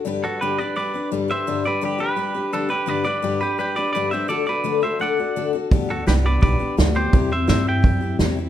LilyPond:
<<
  \new Staff \with { instrumentName = "Clean electric guitar" } { \time 4/4 \key g \major \tempo 4 = 170 r8 <fis' a'>8 <g' b'>8 <b' d''>8 <b' d''>4 r8 <c'' e''>8~ | <c'' e''>8 <b' d''>8 <g' b'>8 <g' b'>4. <d' a'>8 <g' b'>8 | <b' d''>8 <b' d''>4 <g' b'>8 <g' b'>8 <b' d''>8 <b' d''>8 <c'' e''>8 | <a' d''>8 <b' d''>4 <c'' e''>8 <d'' fis''>4. r8 |
r8 <fis' a'>8 <g' b'>8 <b' d''>8 <b' d''>4 r8 <g' c''>8~ | <g' c''>8 <c'' e''>8 <c'' e''>8 <e'' g''>4. r4 | }
  \new Staff \with { instrumentName = "Steel-string acoustic guitar" } { \time 4/4 \key g \major <g, d g d' g' b'>8 <g d' g' b'>8 <g, d g d' g' b'>8 <g d' g' b'>8 <g d' g' b'>8 <g d' g' b'>8 <g, d g d' g' b'>8 <g d' g' b'>8 | <g, d g d' g' b'>8 <g d' g' b'>8 <g, d g d' g' b'>8 <g d' g' b'>8 <g d' g' b'>8 <g d' g' b'>8 <g, d g d' g' b'>8 <g d' g' b'>8 | <g, d g d' g' b'>8 <g d' g' b'>8 <g, d g d' g' b'>8 <g d' g' b'>8 <g d' g' b'>8 <g d' g' b'>8 <g, d g d' g' b'>8 <g d' g' b'>8 | <d a d' fis' a'>8 <d' fis' a'>8 <d a d' fis' a'>8 <d' fis' a'>8 <a d' fis' a'>8 <d' fis' a'>8 <d a d' fis' a'>8 <d' fis' a'>8 |
<g, d g b d' g'>8 <g b d' g'>8 <g, d g b d' g'>8 <g b d' g'>8 <g b d' g'>8 <g b d' g'>8 <g, d g b d' g'>8 <g b d' g'>8 | <c g c' e' g'>8 <c' e' g'>8 <c g c' e' g'>8 <c' e' g'>8 <g c' e' g'>8 <c' e' g'>8 <c g c' e' g'>8 <c' e' g'>8 | }
  \new Staff \with { instrumentName = "Upright bass" } { \clef bass \time 4/4 \key g \major r1 | r1 | r1 | r1 |
d,4 c,4 b,,8 r8 d,4 | e,4 g,4 fis,4 e,4 | }
  \new DrumStaff \with { instrumentName = "Drums" } \drummode { \time 4/4 r4 r4 r4 r4 | r4 r4 r4 r4 | r4 r4 r4 r4 | r4 r4 r4 r4 |
<hho bd>4 <hho sn>4 <hho bd>4 <hho sn>4 | <hho bd>4 <hho sn>4 <hho bd>4 <hho sn>4 | }
>>